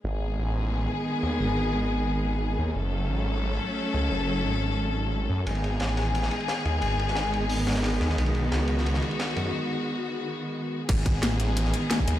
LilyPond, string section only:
\new Staff \with { instrumentName = "String section" } { \time 4/4 \key gis \phrygian \tempo 4 = 177 << { gis'1~ | gis'1 | a'1~ | a'1 |
gis'1~ | gis'1 | fis'1~ | fis'1 |
gis'1 | } \\ { <dis gis b>1~ | <dis gis b>1 | <fis a cis'>1~ | <fis a cis'>1 |
<dis gis b>1~ | <dis gis b>1~ | <dis gis b>1~ | <dis gis b>1 |
<dis gis b>1 | } >> }